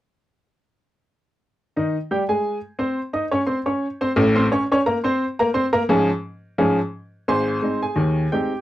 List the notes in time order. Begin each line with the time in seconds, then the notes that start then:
1.76 D#3 D#4 D#5
2.11 G3 G4 G5
2.29 G#3 G#4 G#5
2.79 C4 C5 C6
3.13 D#4 D#5 D#6
3.31 C#4 C#5 C#6
3.47 C4 C5 C6
3.66 C#4 C#5 C#6
4.01 C4 C5 C6
4.16 A1 A2
4.36 C4 C5 C6
4.52 C#4 C#5 C#6
4.72 C#4 C#5 C#6
4.86 A#3 A#4 A#5
5.04 C4 C5 C6
5.39 A#3 A#4 A#5
5.54 C4 C5 C6
5.73 A#3 A#4 A#5
5.89 G#2 F3 C#4 G#4
6.58 G#2 F3 C#4 G#4
7.28 G#1 G#2 C5 G#5 C6
7.62 G#3 C4 D#4
7.82 G#4 G#5
7.96 D#2 D#3
8.32 G#3 C4 D#4 G4 G5